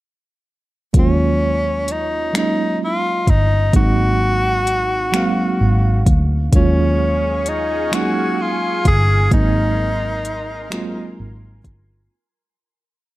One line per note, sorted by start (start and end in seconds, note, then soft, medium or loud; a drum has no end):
0.93 3.23 D#2 medium
0.93 1.98 F#3 medium
0.93 1.98 G#3 medium
0.93 1.98 A#3 medium
0.93 1.99 C#4 medium
0.93 1.99 F4 medium
0.93 kick loud
0.93 closed hi-hat medium
0.98 1.93 C#4 medium
1.88 2.36 D#4 medium
1.88 closed hi-hat medium
2.33 3.37 F#3 medium
2.33 3.38 G#3 medium
2.33 3.38 A#3 soft
2.33 3.39 C#4 medium
2.33 3.39 D#4 medium
2.33 finger snap loud
2.33 closed hi-hat medium
2.37 2.79 D#4 medium
2.84 3.31 F4 medium
3.27 3.70 G1 medium
3.27 3.75 D#4 medium
3.27 kick medium
3.27 closed hi-hat medium
3.73 5.56 G#1 medium
3.73 4.77 F#3 medium
3.73 4.77 G#3 medium
3.73 4.78 A#3 medium
3.73 4.78 C4 medium
3.73 4.79 D#4 medium
3.73 6.03 F#4 medium
3.73 kick loud
3.73 closed hi-hat medium
4.67 closed hi-hat medium
5.12 6.16 F#3 medium
5.12 6.17 G#3 medium
5.12 6.17 A#3 medium
5.12 6.18 C4 medium
5.12 finger snap loud
5.12 closed hi-hat medium
5.16 6.18 F5 medium
5.61 6.02 G#1 medium
6.06 6.49 D2 medium
6.06 kick medium
6.06 closed hi-hat medium
6.52 8.88 D#2 medium
6.52 7.56 F#3 medium
6.52 7.56 G#3 medium
6.52 7.57 A#3 medium
6.52 7.57 C#4 medium
6.52 7.50 C#4 medium
6.52 9.28 G#4 medium
6.52 9.28 F5 medium
6.52 12.06 G#5 medium
6.52 9.28 C#6 medium
6.52 kick loud
6.52 closed hi-hat medium
6.56 7.58 F4 medium
7.46 7.96 D#4 medium
7.46 closed hi-hat medium
7.91 8.95 F#3 medium
7.91 8.96 G#3 medium
7.91 8.96 A#3 medium
7.91 8.97 C#4 medium
7.91 8.97 D#4 medium
7.91 8.43 F#4 medium
7.91 finger snap loud
7.91 closed hi-hat medium
8.41 8.86 F4 medium
8.85 9.28 G1 medium
8.85 9.29 G#4 loud
8.85 kick medium
8.85 closed hi-hat medium
9.31 11.14 G#1 medium
9.31 10.35 F#3 medium
9.31 10.36 G#3 medium
9.31 10.36 A#3 medium
9.31 10.37 C4 medium
9.31 11.14 D#4 medium
9.31 10.37 D#4 medium
9.31 12.08 A#4 medium
9.31 12.08 C6 medium
9.31 kick loud
9.31 closed hi-hat medium
10.25 closed hi-hat medium
10.70 11.74 F#3 medium
10.70 11.75 G#3 medium
10.70 11.75 A#3 medium
10.70 11.76 C4 medium
10.70 11.76 F4 medium
10.70 finger snap medium
10.70 closed hi-hat medium
11.20 11.61 G#1 medium
11.64 12.07 G1 medium
11.64 kick medium
11.64 closed hi-hat medium